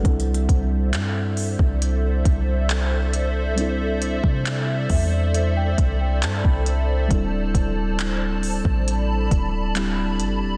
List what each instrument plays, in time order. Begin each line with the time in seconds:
Already playing: synth keys F#5
0.02 808-style bass C2, synth keys G3 C4 D4, analog synth pad A4 C5 D5 E5, kick, closed hi-hat
0.07 synth keys E4 A4
0.20 closed hi-hat
0.34 closed hi-hat
0.49 808-style bass C2, kick, closed hi-hat
0.93 808-style bass G2, clap, closed hi-hat
1.37 open hi-hat
1.59 808-style bass C2, kick
1.82 closed hi-hat
2.25 808-style bass C2, kick, closed hi-hat
2.70 clap, closed hi-hat
3.13 closed hi-hat
3.55 synth keys G3 C4 D4, closed hi-hat
3.60 synth keys E4 A4
4.02 closed hi-hat
4.24 808-style bass C3, kick
4.46 clap, closed hi-hat
4.90 808-style bass E2, synth keys E5, kick, open hi-hat
5.12 synth keys D5
5.34 synth keys E5, closed hi-hat
5.57 synth keys G5
5.78 808-style bass C2, kick, closed hi-hat
6.01 synth keys G5
6.22 808-style bass G2, synth keys A5, clap, closed hi-hat
6.44 808-style bass C2, synth keys B5, kick
6.66 closed hi-hat
7.08 808-style bass D1, synth keys G3 C4 D4, analog synth pad A5, kick, closed hi-hat
7.12 synth keys E4 A4
7.55 808-style bass D1, kick, closed hi-hat
7.99 clap, closed hi-hat
8.43 open hi-hat
8.65 808-style bass A1, kick
8.87 analog synth pad B5, closed hi-hat
9.31 808-style bass D1, kick, closed hi-hat
9.74 synth keys G3 C4 D4 E4 G4, clap, closed hi-hat
10.20 808-style bass F#1, closed hi-hat
10.42 808-style bass D1